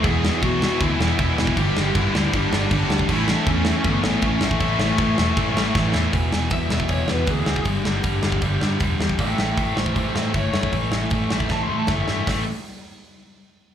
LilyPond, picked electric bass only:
\new Staff \with { instrumentName = "Picked electric bass" } { \clef bass \time 4/4 \key a \mixolydian \tempo 4 = 157 e,,4 b,,4 d,8 e,,8 e,,8 e,,8 | g,,8 g,,8 g,,8 d,8 g,,8 g,,8 g,,8 d,8 | a,,4 e,4 g,,8 a,,8 a,,8 a,,8 | a,,8 a,,8 a,,8 e,,8 a,,8 a,,8 a,,8 e,8 |
e,,8 e,,8 e,,8 e,,8 e,,8 e,8 d,8 d,8 | g,,8 g,,8 g,,8 g,,8 g,,8 g,8 e,,8 e,8 | a,,8 a,,8 a,,8 a,,8 a,,8 a,8 g,,8 g,8 | a,,8 a,,8 a,,8 a,,8 a,,8 a,8 g,,8 g,8 |
a,,8 r2. r8 | }